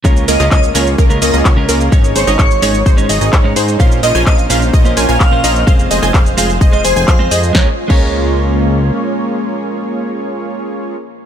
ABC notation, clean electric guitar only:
X:1
M:4/4
L:1/16
Q:1/4=128
K:Db
V:1 name="Clean electric guitar"
[D,A,DFB]3 [D,A,DFB]2 z [D,A,DFB] z2 [D,A,DFB] z3 [D,A,DFB] z2 | [A,,A,DEd]3 [A,,A,DEd]2 z [A,,A,DEd] z2 [A,,A,DEd] z3 [A,,A,DEd] z2 | [B,,B,DFc]3 [B,,B,DFc]2 z [B,,B,DFc] z2 [B,,B,DFc] z3 [B,,B,DFc] z2 | [A,CFc]3 [A,CFc]2 z [A,CFc] z2 [A,CFc] z3 [A,CFc] z2 |
[A,DFB] z2 [A,DFB]12- [A,DFB]- | [A,DFB]16 |]